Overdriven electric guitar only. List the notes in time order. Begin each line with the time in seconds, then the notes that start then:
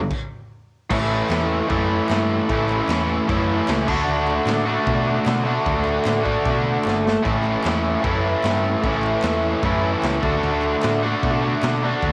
0.00 G2 D3
0.91 A2 E3 A3 C#4 E4
1.69 A2 E3 A3 C#4 E4
2.49 A2 E3 A3 C#4 E4
3.28 A2 E3 A3 C#4 E4
3.87 D3 A3 D4 F#4
4.65 D3 A3 D4 F#4
5.44 D3 A3 D4 F#4
6.23 D3 A3 D4 F#4
7.23 A2 E3 A3 C#4 E4
8.01 A2 E3 A3 C#4 E4
8.82 A2 E3 A3 C#4 E4
9.63 A2 E3 A3 C#4 E4
10.21 D3 A3 D4 F#4
11.03 D3 A3 D4 F#4
11.82 D3 A3 D4 F#4